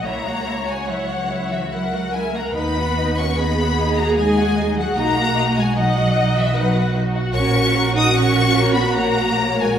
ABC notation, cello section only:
X:1
M:3/4
L:1/16
Q:1/4=75
K:B
V:1 name="Cello section"
A,3 G, F,3 E, F,2 G, A, | B,3 C B,3 A, G,3 F, | A,3 G, F,3 E, F,2 z2 | [K:F#] C3 D C3 B, A,3 G, |]